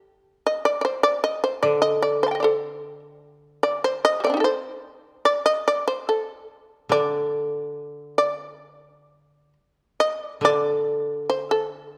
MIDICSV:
0, 0, Header, 1, 3, 480
1, 0, Start_track
1, 0, Tempo, 793651
1, 31, Time_signature, 4, 2, 24, 8
1, 2432, Tempo, 818554
1, 3392, Tempo, 841515
1, 4832, Tempo, 914634
1, 5792, Tempo, 848656
1, 6904, End_track
2, 0, Start_track
2, 0, Title_t, "Shamisen"
2, 0, Program_c, 0, 106
2, 281, Note_on_c, 0, 75, 85
2, 390, Note_off_c, 0, 75, 0
2, 394, Note_on_c, 0, 74, 86
2, 479, Note_off_c, 0, 74, 0
2, 492, Note_on_c, 0, 74, 64
2, 510, Note_off_c, 0, 74, 0
2, 513, Note_on_c, 0, 72, 76
2, 623, Note_off_c, 0, 72, 0
2, 625, Note_on_c, 0, 74, 89
2, 743, Note_off_c, 0, 74, 0
2, 748, Note_on_c, 0, 75, 95
2, 864, Note_off_c, 0, 75, 0
2, 869, Note_on_c, 0, 72, 78
2, 981, Note_off_c, 0, 72, 0
2, 983, Note_on_c, 0, 74, 92
2, 1097, Note_off_c, 0, 74, 0
2, 1099, Note_on_c, 0, 75, 92
2, 1217, Note_off_c, 0, 75, 0
2, 1225, Note_on_c, 0, 74, 83
2, 1340, Note_off_c, 0, 74, 0
2, 1349, Note_on_c, 0, 72, 72
2, 1370, Note_on_c, 0, 84, 28
2, 1375, Note_off_c, 0, 72, 0
2, 1378, Note_on_c, 0, 81, 30
2, 1396, Note_off_c, 0, 81, 0
2, 1398, Note_on_c, 0, 79, 36
2, 1421, Note_on_c, 0, 75, 37
2, 1441, Note_off_c, 0, 84, 0
2, 1449, Note_off_c, 0, 79, 0
2, 1452, Note_on_c, 0, 74, 43
2, 1465, Note_off_c, 0, 75, 0
2, 1468, Note_on_c, 0, 72, 44
2, 1477, Note_on_c, 0, 69, 67
2, 1522, Note_off_c, 0, 74, 0
2, 1540, Note_off_c, 0, 72, 0
2, 1810, Note_off_c, 0, 69, 0
2, 2197, Note_on_c, 0, 74, 91
2, 2305, Note_off_c, 0, 74, 0
2, 2324, Note_on_c, 0, 72, 82
2, 2430, Note_off_c, 0, 72, 0
2, 2447, Note_on_c, 0, 75, 100
2, 2538, Note_on_c, 0, 55, 34
2, 2549, Note_off_c, 0, 75, 0
2, 2556, Note_off_c, 0, 55, 0
2, 2559, Note_on_c, 0, 57, 35
2, 2563, Note_on_c, 0, 74, 90
2, 2576, Note_on_c, 0, 60, 42
2, 2594, Note_on_c, 0, 62, 42
2, 2615, Note_off_c, 0, 57, 0
2, 2617, Note_on_c, 0, 63, 46
2, 2634, Note_off_c, 0, 62, 0
2, 2636, Note_on_c, 0, 67, 49
2, 2651, Note_off_c, 0, 60, 0
2, 2653, Note_off_c, 0, 67, 0
2, 2656, Note_on_c, 0, 69, 56
2, 2667, Note_off_c, 0, 74, 0
2, 2679, Note_on_c, 0, 72, 77
2, 2692, Note_off_c, 0, 63, 0
2, 2731, Note_off_c, 0, 69, 0
2, 2896, Note_off_c, 0, 72, 0
2, 3154, Note_on_c, 0, 74, 95
2, 3264, Note_off_c, 0, 74, 0
2, 3274, Note_on_c, 0, 75, 91
2, 3384, Note_off_c, 0, 75, 0
2, 3402, Note_on_c, 0, 74, 98
2, 3507, Note_off_c, 0, 74, 0
2, 3516, Note_on_c, 0, 72, 90
2, 3623, Note_off_c, 0, 72, 0
2, 3637, Note_on_c, 0, 69, 72
2, 3856, Note_off_c, 0, 69, 0
2, 4111, Note_on_c, 0, 74, 99
2, 4470, Note_off_c, 0, 74, 0
2, 4470, Note_on_c, 0, 73, 99
2, 4555, Note_off_c, 0, 73, 0
2, 4555, Note_on_c, 0, 72, 99
2, 4808, Note_off_c, 0, 72, 0
2, 4831, Note_on_c, 0, 74, 86
2, 5199, Note_off_c, 0, 74, 0
2, 5199, Note_on_c, 0, 73, 86
2, 5282, Note_off_c, 0, 73, 0
2, 5282, Note_on_c, 0, 72, 86
2, 5538, Note_off_c, 0, 72, 0
2, 5786, Note_on_c, 0, 75, 96
2, 5921, Note_off_c, 0, 75, 0
2, 5921, Note_on_c, 0, 74, 96
2, 6013, Note_off_c, 0, 74, 0
2, 6039, Note_on_c, 0, 74, 89
2, 6493, Note_off_c, 0, 74, 0
2, 6518, Note_on_c, 0, 72, 84
2, 6626, Note_off_c, 0, 72, 0
2, 6640, Note_on_c, 0, 69, 73
2, 6904, Note_off_c, 0, 69, 0
2, 6904, End_track
3, 0, Start_track
3, 0, Title_t, "Koto"
3, 0, Program_c, 1, 107
3, 986, Note_on_c, 1, 50, 61
3, 2426, Note_off_c, 1, 50, 0
3, 4097, Note_on_c, 1, 50, 62
3, 5553, Note_off_c, 1, 50, 0
3, 6017, Note_on_c, 1, 50, 60
3, 6904, Note_off_c, 1, 50, 0
3, 6904, End_track
0, 0, End_of_file